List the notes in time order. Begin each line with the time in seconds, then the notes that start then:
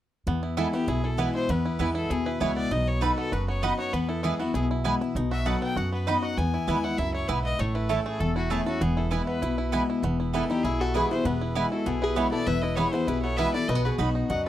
0.27 E2 B3
0.43 E4
0.57 E3 G#3 B3 E4 A4 B4 G#5
0.73 B3 E4 G4
0.87 B1 B2 E4 G#4
1.04 E4 A4
1.17 E3 G#3 B3 E4 B4 G#5
1.35 E4 C5
1.49 E2 B3 B4
1.65 E4
1.79 E2 E3 G#3 B3 E4 B4 G#5
1.95 E4 A4
2.10 D#2 B2 E4 G#4
2.26 E4 B4
2.40 C#2 E3 G#3 B3 E4 B4 C#5 G#5
2.56 B3 D5
2.71 B1 B2 D#4 D#5
2.87 C#5
3.01 F#3 B3 D#4 F#4 A4 B4 F#5 B5
3.18 B3 A4
3.32 F#1 F#2 F#4 B4
3.48 B3 C#5
3.63 F#3 B3 D#4 F#4 B4 D#5 F#5 B5
3.79 F#4 C#5
3.93 E2 B3 B4
4.09 E4 A4
4.23 E3 G#3 B3 E4 G#4 B4 G#5
4.40 B3 E4 F#4
4.54 B1 B2 E4 G#4
4.71 E4
4.84 E3 G#3 B3 E4 B4 G#5
5.01 B3 E4
5.15 B1 B2 D#4
5.31 F#4 E5
5.46 F#3 B3 D#4 F#4 A4 B4 F#5 B5
5.62 B3 G5
5.76 F#2 F#4 F#5
5.92 B3 B4
6.07 F#3 B3 D#4 F#4 B4 D#5 F#5 B5
6.23 F#4 F#5
6.37 E2 B3 G#5
6.54 E4
6.67 D#2 E3 G#3 B3 E4 B4 G#5
6.84 E4 F#5
6.98 C#2 F#2 E4 E5
7.14 E4 C#5
7.28 B1 G#2 B3 E4 B4 G#5
7.44 B3 D#5
7.59 A1 A2 A3 C#5
7.75 E4 B4
7.89 E3 A3 C#4 E4 A4 C#5 A5
8.05 A3 G#4
8.20 E1 E2 A4
8.36 E4 F#4
8.50 E3 A3 C#4 E4 G#4 C#5 A5
8.66 C#4 E4 F#4 A4
8.81 E1 E2 B3 G#4
8.97 E4 A4
9.11 E3 G#3 B3 E4 B4 G#5
9.27 B3 B4
9.42 B1 B2 E4
9.58 E4
9.72 E3 G#3 B3 E4 B4 G#5
9.90 E4
10.03 E1 E2 B3
10.20 E4
10.33 E3 G#3 B3 E4 A4 B4 G#5
10.49 B3 D#4 E4 G4
10.63 B1 B2 E4 G#4
10.79 E4 F#4 A4
10.94 E3 G#3 B3 E4 G#4 B4 G#5
11.10 B3 E4 G#4 C5
11.25 E1 E2 B3 G#4 B4
11.41 E4
11.55 E3 G#3 B3 E4 B4 G#5
11.72 E4 F#4 A4
11.86 B1 B2 B3 E4 G#4
12.02 E4 G#4 B4
12.16 E3 G#3 B3 E4 G#4 B4 C#5 G#5
12.31 B3 E4 A4 D5
12.47 E1 E2 E4 B4 E5
12.62 E4 B4 D#5
12.76 E3 G#3 B3 E4 G#4 B4 C#5 G#5
12.92 B3 E4 G#4 C5
13.07 B1 B2 E4 G#4 B4
13.22 B3 A4 C#5
13.37 E3 G#3 B3 E4 B4 E5 G#5
13.54 B3 E4 A4 D5
13.68 B1 B2 A3 B4 D#5
13.75 B3
13.84 F#4 G#4 B4
13.98 B1 F#3 B3 D#4 F#4 B4 F#5 B5
14.15 D#4
14.30 C#2 F#2 F#4 D#5 F#5
14.45 B4, muted resonator guitar played with a steel bar stroke